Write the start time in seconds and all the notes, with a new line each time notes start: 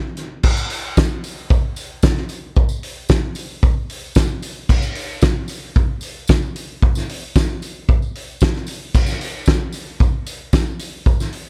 0.17 snare, closed hi-hat
0.43 kick, crash, tambourine
0.57 tambourine
0.70 open hi-hat
0.97 kick, snare, tambourine
1.24 open hi-hat, tambourine
1.38 tambourine
1.50 kick, tambourine
1.76 open hi-hat, tambourine
2.03 kick, snare, tambourine
2.16 snare, tambourine
2.29 open hi-hat, tambourine
2.56 kick, tambourine
2.69 tambourine
2.83 open hi-hat
3.09 kick, snare, tambourine
3.35 open hi-hat, tambourine
3.49 tambourine
3.63 kick, tambourine
3.90 open hi-hat
4.15 kick, snare, tambourine
4.29 tambourine
4.42 open hi-hat, tambourine
4.69 kick, tambourine, crash
4.82 tambourine
4.95 open hi-hat
5.22 kick, snare, tambourine
5.48 open hi-hat, tambourine
5.61 tambourine
5.75 kick, tambourine
6.01 open hi-hat, tambourine
6.28 kick, snare, tambourine
6.42 tambourine
6.56 open hi-hat, tambourine
6.82 kick
6.95 snare, tambourine
7.09 open hi-hat, tambourine
7.23 tambourine
7.36 kick, snare, tambourine
7.49 tambourine
7.62 open hi-hat, tambourine
7.88 kick, tambourine
8.02 tambourine
8.16 open hi-hat
8.28 tambourine
8.41 kick, snare, tambourine
8.54 snare, tambourine
8.67 open hi-hat, tambourine
8.94 kick, tambourine, crash
9.06 snare, tambourine
9.21 open hi-hat
9.46 kick, snare, tambourine
9.72 open hi-hat, tambourine
9.86 tambourine
10.00 kick, tambourine
10.26 open hi-hat, tambourine
10.53 kick, snare, tambourine
10.67 tambourine
10.80 open hi-hat, tambourine
11.06 kick, tambourine
11.20 snare, tambourine
11.33 open hi-hat